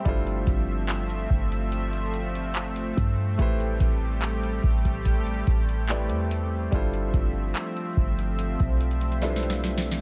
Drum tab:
HH |x-----x-----x-----------x-----x-----------x-----x-----x-----x-----x-----x-----x-----x-----------|x-----x-----x-----------x-----x-----------x-----x-----x-----x-----x-----x-----x-----x-----------|x-----x-----x-----------x-----x-----------x-----x-----x-----x--x--x--x--x-----x-----x-----------|
CP |------------------------x-----------------------------------------------x-----------------------|------------------------x-----------------------------------------------x-----------------------|------------------------x-----------------------------------------------------------------------|
SD |------------------------------------------------------------------------------------------------|------------------------------------------------------------------------------------------------|------------------------------------------------------------------------o---o---o---o---o---o---|
BD |o-----------o-----------------------o-----------------------------------------------o-----------|o-----------o-----------------------o-----o-----o-----------o-----------------------------------|o-----------o-----------------------o-----------------o-----------------------------------------|